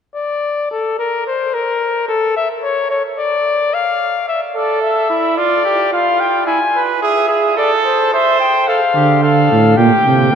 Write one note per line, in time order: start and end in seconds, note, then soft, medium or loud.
0.15 0.67 D5 medium
0.71 0.98 A4 medium
0.99 1.26 A#4 medium
1.27 1.55 C5 medium
1.54 2.08 A#4 medium
2.08 2.35 A4 medium
2.36 2.49 E5 medium
2.63 2.90 C#5 medium
2.90 3.03 C#5 medium
3.19 3.75 D5 medium
3.74 4.28 F5 medium
4.28 4.41 E5 medium
4.55 5.07 A4 medium
4.55 4.81 D5 medium
4.82 5.36 E5 medium
5.10 5.39 E4 medium
5.37 5.64 F4 medium
5.37 5.92 D5 medium
5.65 5.92 G4 medium
5.93 6.46 F4 medium
5.93 6.22 F5 medium
6.20 6.46 G5 medium
6.46 6.59 E4 medium
6.46 6.82 G#5 medium
6.76 7.02 B4 medium
7.02 7.28 G#4 medium
7.02 7.54 E5 medium
7.29 7.56 G#4 medium
7.57 8.11 A4 loud
7.57 7.71 D5 medium
7.84 8.12 C5 medium
8.14 8.67 C5 medium
8.14 8.39 E5 medium
8.40 8.69 G5 medium
8.68 8.80 A4 medium
8.68 9.23 F5 medium
8.95 9.47 D3 medium
8.95 9.22 G4 medium
9.23 9.76 A4 medium
9.23 9.78 F5 medium
9.51 9.77 A2 medium
9.77 9.90 A#2 medium
9.77 10.31 G4 medium
9.77 10.35 G5 medium
10.05 10.33 C3 medium